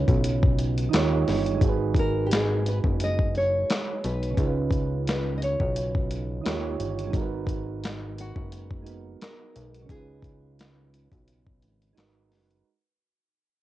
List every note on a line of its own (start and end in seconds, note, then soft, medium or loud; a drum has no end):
0.00 0.85 C#3 medium
0.00 0.87 C#4 medium
0.00 0.89 D#4 medium
0.00 0.91 F4 medium
0.00 0.93 B4 medium
0.00 1.24 C#5 loud
0.08 0.89 B1 loud
0.08 kick medium
0.08 closed hi-hat soft
0.24 closed hi-hat medium
0.43 kick loud
0.59 closed hi-hat medium
0.78 closed hi-hat soft
0.89 1.60 D#3 medium
0.89 1.57 D#4 medium
0.89 1.62 F4 medium
0.93 1.25 D#2 loud
0.93 1.63 G4 medium
0.93 1.64 C#5 medium
0.93 snare loud
0.93 clap medium
0.93 closed hi-hat medium
1.28 1.59 G1 loud
1.28 snare soft
1.28 open hi-hat soft
1.47 closed hi-hat soft
1.55 4.30 G#3 medium
1.55 4.32 D#4 medium
1.61 2.81 G#1 loud
1.61 4.34 F#4 medium
1.61 kick loud
1.61 closed hi-hat medium
1.66 4.36 G#4 medium
1.66 4.37 B4 medium
1.95 kick loud
1.95 closed hi-hat medium
1.99 2.27 A#4 medium
2.27 2.32 G4 medium
2.32 2.68 G#4 medium
2.32 snare loud
2.32 clap medium
2.32 closed hi-hat medium
2.66 2.77 B4 medium
2.66 closed hi-hat medium
2.84 3.65 F#1 medium
2.84 kick medium
3.00 3.37 D#5 loud
3.00 closed hi-hat medium
3.19 kick medium
3.35 4.05 C#5 loud
3.35 closed hi-hat medium
3.70 snare loud
3.70 clap medium
3.70 closed hi-hat medium
4.04 4.35 B1 loud
4.04 5.08 B4 loud
4.04 closed hi-hat medium
4.23 closed hi-hat soft
4.31 6.37 C#3 medium
4.31 6.39 C#4 medium
4.37 5.57 C#2 loud
4.37 6.41 D#4 medium
4.37 kick loud
4.37 closed hi-hat medium
4.42 6.43 F4 medium
4.42 6.44 B4 medium
4.71 kick loud
4.71 closed hi-hat medium
5.07 5.37 B4 medium
5.07 snare loud
5.07 clap medium
5.07 closed hi-hat medium
5.37 5.42 D#5 medium
5.42 6.76 C#5 medium
5.42 closed hi-hat medium
5.60 6.41 B1 loud
5.60 kick medium
5.76 closed hi-hat medium
5.95 kick loud
6.11 closed hi-hat medium
6.41 7.12 D#3 medium
6.41 7.09 D#4 medium
6.41 7.14 F4 medium
6.45 6.77 D#2 loud
6.45 7.15 G4 medium
6.45 7.16 C#5 medium
6.45 snare loud
6.45 clap medium
6.45 closed hi-hat medium
6.80 7.11 G1 loud
6.80 closed hi-hat medium
6.99 closed hi-hat soft
7.07 8.79 G#3 medium
7.07 8.81 D#4 medium
7.13 8.33 G#1 medium
7.13 8.83 F#4 medium
7.13 kick loud
7.13 closed hi-hat medium
7.18 8.85 A#4 medium
7.18 8.87 B4 medium
7.47 kick medium
7.47 closed hi-hat medium
7.84 snare loud
7.84 clap medium
7.84 closed hi-hat medium
8.18 9.18 F#4 medium
8.18 closed hi-hat medium
8.36 9.16 F#1 medium
8.36 kick medium
8.52 closed hi-hat medium
8.71 kick medium
8.82 9.88 G#3 soft
8.82 9.88 D#4 soft
8.82 9.89 F#4 soft
8.87 9.91 B3 medium
8.87 9.90 A#4 soft
8.87 closed hi-hat medium
9.21 9.91 A#4 loud
9.21 snare loud
9.21 clap medium
9.21 closed hi-hat medium
9.56 9.87 B1 loud
9.56 closed hi-hat medium
9.74 closed hi-hat soft
9.82 11.89 C#3 medium
9.82 11.91 C#4 medium
9.89 11.08 C#2 loud
9.89 11.92 D#4 medium
9.89 11.94 F4 medium
9.89 10.90 G#4 medium
9.89 kick loud
9.89 closed hi-hat medium
9.97 11.96 B4 medium
10.22 kick loud
10.22 closed hi-hat medium
10.59 snare loud
10.59 clap medium
10.59 closed hi-hat medium
10.94 closed hi-hat medium
11.12 11.65 B1 medium
11.12 kick medium
11.12 closed hi-hat soft
11.28 closed hi-hat medium
11.47 kick medium
11.62 11.94 G#1 loud
11.62 closed hi-hat medium
11.82 closed hi-hat soft
11.93 12.64 G#3 medium
11.93 12.64 D#4 medium
11.93 12.65 F#4 medium
11.97 12.34 G#1 loud
11.97 12.66 A#4 medium
11.97 12.67 B4 medium
11.97 snare loud
11.97 clap medium
11.97 closed hi-hat medium
12.32 12.63 F#1 medium
12.32 snare soft
12.32 open hi-hat soft
12.51 closed hi-hat soft